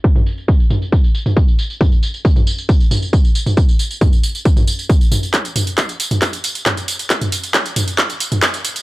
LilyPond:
\new DrumStaff \with { instrumentName = "Drums" } \drummode { \time 4/4 \tempo 4 = 136 <bd tamb>16 <tamb toml>16 tamb16 tamb16 <bd tamb>16 tamb16 <tamb toml>16 tamb16 <bd tamb>16 tamb16 tamb16 <tamb toml>16 <bd tamb>16 tamb16 tamb16 tamb16 | <bd tamb toml>16 tamb16 tamb16 tamb16 <bd tamb>16 <tamb toml>16 tamb16 tamb16 <bd tamb>16 tamb16 <tamb toml>16 tamb16 <bd tamb>16 tamb16 tamb16 <tamb toml>16 | <bd tamb>16 tamb16 tamb16 tamb16 <bd tamb toml>16 tamb16 tamb16 tamb16 <bd tamb>16 <tamb toml>16 tamb16 tamb16 <bd tamb>16 tamb16 <tamb toml>16 tamb16 | <hc hh bd tamb>16 <hh tamb>16 <hho tamb toml>16 <hh tamb>16 <hc hh bd tamb>16 <hh tamb>16 <hho tamb>16 <hh tamb toml>16 <hc hh bd tamb>16 <hh tamb>16 <hho tamb>16 <hh tamb>16 <hc hh bd tamb toml>16 <hh tamb>16 <hho tamb>16 <hh tamb>16 |
<hc hh bd tamb>16 <hh tamb toml>16 <hho tamb>16 <hh tamb>16 <hc hh bd tamb>16 <hh tamb>16 <hho tamb toml>16 <hh tamb>16 <hc hh bd tamb>16 <hh tamb>16 <hho tamb>16 <hh tamb toml>16 <hc hh bd tamb>16 <hh tamb>16 <hho tamb>16 <hh tamb>16 | }